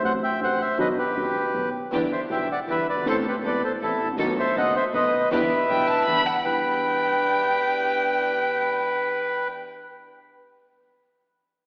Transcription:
0.02 A1 A2 C3 F#3 A3 F#4 C5 F#5
0.23 E5 G5
0.40 A1 A2 C3 F#3 A3 F#4 C5 F#5
0.61 C5 E5
0.78 B1 B2 D#3 F#3 B3 F#4 B4 D#5
0.98 G4 B4
1.16 F#1 F#2 D#3 F#3 B3 F#4
1.54 B1 B2 D#3 F#3 B3 F#4
1.92 E2 D3 E3 G3 B3 D4 E4 G4
2.12 C5 E5
2.29 B1 B2 D3 G3 B3 D4 E4 G4 E5 G5
2.52 D5 F#5
2.67 E2 D3 E3 G3 B3 D4 E4 G4 B4
2.71 E5
2.87 G1 B4 D5
2.92 F#1
2.97 G1
3.01 G#1
3.06 A1 A2 C3 A3 B3 C4 E4 A4 C5
3.28 G4 B4
3.43 E1 E2 C3 A3 B3 C4 E4 A4 B4 D5
3.64 A4 C5
3.81 A1 A2 C3 A3 B3 C4 E4 A4
4.00 A1
4.06 G#1
4.10 A1
4.15 A#1 B1 B2 D#3 A3 B3 D#4 A4
4.19 F#4
4.39 C5 E5
4.55 F#1 F#2 D#3 A3 B3 D#4 F#4 A4 D#5 F#5
4.76 C5 E5
4.93 B1 B2 D#3 A3 B3 D#4 F#4 A4 B4 D#5
5.31 E2 D3 E3 G3 B3 D4 E4 G4 B4 E5
5.69 B1 B2 D3 G3 B3 D4 E4 G4 G5
5.87 A5
6.05 E2 D3 E3 G3 B3 D4 E4 G4 B5
6.26 F#5
6.45 E2 G3 D4 E4 G4 B4 G5

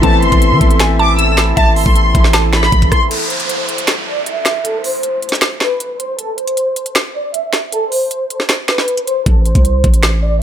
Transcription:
Already playing: A4 E5
0.01 A1 E3 A3 B3 C4 E4 A5, kick, closed hi-hat
0.22 G#1 C6, closed hi-hat
0.32 A1, kick, closed hi-hat
0.42 closed hi-hat
0.51 E3
0.61 A1, kick, closed hi-hat
0.71 closed hi-hat
0.80 G#5, finger snap, snare, closed hi-hat
0.99 A5 D6
1.19 E6, closed hi-hat
1.37 finger snap, snare, closed hi-hat
1.57 A1 E5 A5, kick, closed hi-hat
1.76 G#1 C6, open hi-hat
1.86 A1, kick
1.96 closed hi-hat
2.15 A1, kick, closed hi-hat
2.24 snare
2.33 A5, finger snap, snare, closed hi-hat
2.53 B5, finger snap, snare
2.63 snare
2.72 A1, kick, closed hi-hat
2.82 kick, closed hi-hat
2.91 C6, kick, cross-stick, closed hi-hat
3.11 A4, closed hi-hat, crash, downlifter
3.30 C5, closed hi-hat
3.40 closed hi-hat
3.49 closed hi-hat
3.69 closed hi-hat
3.78 closed hi-hat
3.87 finger snap, snare, closed hi-hat
4.07 D5
4.26 E5, closed hi-hat
4.45 finger snap, snare, closed hi-hat
4.64 A4, closed hi-hat
4.84 C5, open hi-hat
5.03 closed hi-hat
5.22 closed hi-hat
5.29 snare, closed hi-hat
5.35 closed hi-hat
5.41 finger snap, snare, closed hi-hat
5.60 B4, finger snap, snare
5.80 closed hi-hat
6.00 C5, closed hi-hat
6.19 A4, closed hi-hat
6.38 C5, closed hi-hat
6.47 closed hi-hat
6.57 closed hi-hat
6.76 closed hi-hat
6.86 closed hi-hat
6.95 finger snap, snare, closed hi-hat
7.15 D5
7.34 E5, closed hi-hat
7.53 finger snap, snare, closed hi-hat
7.72 A4, closed hi-hat
7.91 C5, open hi-hat
8.11 closed hi-hat
8.30 closed hi-hat
8.40 snare
8.49 finger snap, snare, closed hi-hat
8.68 B4, finger snap, snare
8.78 snare
8.88 closed hi-hat
8.97 closed hi-hat
9.07 C5, closed hi-hat
9.26 A1 A4, kick, closed hi-hat
9.45 C5, closed hi-hat
9.55 C2, kick, closed hi-hat
9.65 closed hi-hat
9.84 A1, kick, closed hi-hat
9.94 closed hi-hat
10.03 finger snap, snare, closed hi-hat
10.22 D5

